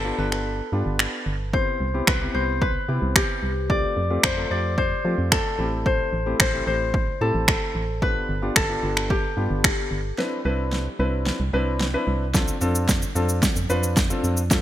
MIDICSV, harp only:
0, 0, Header, 1, 2, 480
1, 0, Start_track
1, 0, Key_signature, 0, "major"
1, 0, Tempo, 540541
1, 1364, Time_signature, 4, 2, 24, 8
1, 12979, End_track
2, 0, Start_track
2, 0, Title_t, "Harp"
2, 0, Program_c, 0, 46
2, 0, Note_on_c, 0, 69, 80
2, 0, Note_on_c, 0, 71, 93
2, 162, Note_off_c, 0, 71, 0
2, 166, Note_on_c, 0, 71, 88
2, 284, Note_off_c, 0, 71, 0
2, 287, Note_on_c, 0, 71, 80
2, 1365, Note_on_c, 0, 72, 97
2, 1418, Note_off_c, 0, 71, 0
2, 1843, Note_on_c, 0, 71, 88
2, 1877, Note_off_c, 0, 69, 0
2, 1896, Note_off_c, 0, 72, 0
2, 2082, Note_on_c, 0, 72, 92
2, 2135, Note_off_c, 0, 71, 0
2, 2321, Note_on_c, 0, 71, 106
2, 2375, Note_off_c, 0, 72, 0
2, 2803, Note_on_c, 0, 67, 87
2, 3284, Note_on_c, 0, 74, 104
2, 3768, Note_on_c, 0, 72, 97
2, 3821, Note_off_c, 0, 71, 0
2, 4003, Note_off_c, 0, 74, 0
2, 4006, Note_on_c, 0, 74, 96
2, 4241, Note_off_c, 0, 72, 0
2, 4245, Note_on_c, 0, 72, 105
2, 4725, Note_on_c, 0, 69, 91
2, 4893, Note_off_c, 0, 67, 0
2, 5203, Note_off_c, 0, 72, 0
2, 5206, Note_on_c, 0, 72, 99
2, 5646, Note_off_c, 0, 74, 0
2, 5683, Note_off_c, 0, 72, 0
2, 5686, Note_on_c, 0, 72, 89
2, 5921, Note_off_c, 0, 72, 0
2, 5924, Note_on_c, 0, 72, 91
2, 6401, Note_off_c, 0, 69, 0
2, 6405, Note_on_c, 0, 69, 78
2, 7124, Note_on_c, 0, 71, 108
2, 7177, Note_off_c, 0, 72, 0
2, 7600, Note_off_c, 0, 69, 0
2, 7603, Note_on_c, 0, 69, 86
2, 8082, Note_on_c, 0, 67, 86
2, 8943, Note_off_c, 0, 71, 0
2, 9553, Note_off_c, 0, 69, 0
2, 10172, Note_off_c, 0, 67, 0
2, 12979, End_track
0, 0, End_of_file